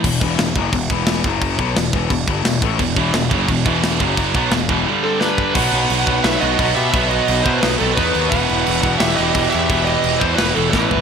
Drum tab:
CC |xxxxxxxx|xxxxxxxx|xxxxxxxx|xxxx----|
SD |--o---o-|--o---o-|--o---o-|--o---o-|
FT |--------|--------|--------|--------|
BD |oo-ooo-o|oo-ooo-o|oo-ooo-o|oo-o---o|

CC |xxxxxxxx|xxxxxxxx|xxxxxxxx|xxxxxx--|
SD |----o---|----o---|----o---|----o-o-|
FT |--------|--------|--------|-------o|
BD |o--o--o-|o--o--o-|o--o--o-|o--o--o-|